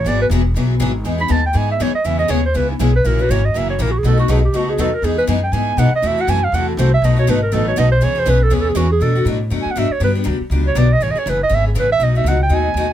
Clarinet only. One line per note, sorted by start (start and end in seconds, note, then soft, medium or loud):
0.08 0.21 D5 medium
0.21 0.27 B4 loud
1.21 1.33 B5 medium
1.32 1.45 A5 medium
1.46 1.59 G5 medium
1.57 1.70 G#5 medium
1.72 1.84 E5 medium
1.82 1.94 C#5 medium
1.95 2.07 D#5 medium
2.06 2.18 E5 medium
2.19 2.32 D#5 medium
2.31 2.44 C#5 medium
2.46 2.58 C5 medium
2.56 2.70 B4 medium
2.70 2.84 D#4 soft
2.82 2.95 G#4 medium
2.96 3.08 B4 loud
3.06 3.22 A#4 medium
3.21 3.32 B4 medium
3.31 3.47 C#5 medium
3.45 3.59 D#5 medium
3.58 3.70 E5 medium
3.70 3.83 C#5 medium
3.82 3.93 A#4 medium
3.92 4.00 F#4 medium
3.99 4.08 G#4 medium
4.07 4.19 A4 medium
4.20 4.33 F#4 medium
4.31 4.44 G#4 medium
4.45 4.58 G4 medium
4.57 4.71 F#4 medium
4.70 4.82 G#4 medium
4.80 4.96 A4 medium
4.95 5.06 A#4 medium
5.05 5.18 G#4 medium
5.18 5.25 B4 loud
5.44 5.55 G5 medium
5.53 5.80 G#5 medium
5.79 5.93 F#5 medium
5.96 6.09 D#5 loud
6.07 6.22 E5 medium
6.21 6.31 F#5 medium
6.30 6.46 G#5 medium
6.44 6.56 F5 medium
6.55 6.68 F#5 medium
6.69 6.80 A4 medium
6.79 6.93 C5 medium
6.94 7.06 E5 loud
7.05 7.18 D#5 medium
7.19 7.32 C#5 medium
7.30 7.42 B4 medium
7.43 7.55 A#4 medium
7.54 7.68 A4 medium
7.68 7.80 C#5 medium
7.79 7.91 D#5 loud
7.92 8.06 C5 medium
8.04 8.21 C#5 medium
8.20 8.31 C5 medium
8.30 8.45 B4 medium
8.43 8.55 A4 loud
8.54 8.62 G#4 medium
8.61 8.71 A4 medium
8.69 8.78 G#4 medium
8.77 8.91 F#4 medium
8.92 9.04 G#4 medium
9.02 9.27 A4 medium
9.62 9.73 G#5 medium
9.71 9.80 F#5 medium
9.79 9.94 E5 medium
9.92 10.03 C#5 medium
10.04 10.12 B4 medium
10.68 10.79 C#5 medium
10.78 10.94 D5 loud
10.93 11.05 D#5 loud
11.03 11.13 C#5 medium
11.11 11.21 D#5 medium
11.19 11.31 C#5 medium
11.29 11.42 B4 medium
11.43 11.56 D#5 loud
11.55 11.67 E5 loud
11.68 11.80 G#4 soft
11.79 11.91 B4 medium
11.92 12.05 E5 loud
12.03 12.16 D#5 medium
12.17 12.30 E5 medium
12.28 12.41 F#5 medium
12.43 12.56 G5 medium
12.54 12.91 G#5 loud